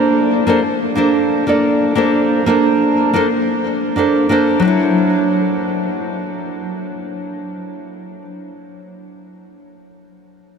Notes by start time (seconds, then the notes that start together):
Already playing: A#3 D4 A4 C5
0.47 A#3 D4 A4 C5
0.95 A#3 D4 A4 C5
1.47 A#3 D4 A4 D5
1.95 A#3 D4 A4 C5
2.46 A#3 D4 A4 C5
3.13 A#3 D4 A4 C5
3.96 A#3 D4 A4 C5
4.29 A#3 D4 A4 C5
4.60 F#3 D4
4.65 E4 C#5